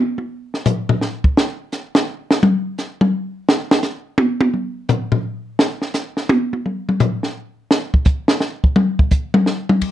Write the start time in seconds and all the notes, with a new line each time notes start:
0.18 high tom
0.54 snare
0.65 floor tom, hi-hat pedal
0.89 floor tom
1.01 snare
1.24 kick
1.37 snare
1.72 snare, hi-hat pedal
1.95 snare
2.31 snare
2.43 mid tom
2.78 snare, hi-hat pedal
3.01 mid tom
3.49 snare
3.71 snare
3.83 snare, hi-hat pedal
4.18 high tom
4.41 high tom
4.54 mid tom
4.89 floor tom, hi-hat pedal
5.12 floor tom
5.59 snare
5.82 snare
5.94 snare, hi-hat pedal
6.17 snare
6.29 high tom
6.53 high tom
6.66 mid tom
6.89 mid tom
7.00 floor tom, hi-hat pedal
7.23 snare
7.71 snare
7.94 kick
8.05 kick, hi-hat pedal
8.28 snare
8.40 snare
8.64 kick
8.76 mid tom
8.99 kick
9.11 kick, hi-hat pedal
9.34 mid tom
9.46 snare
9.69 mid tom
9.82 kick, ride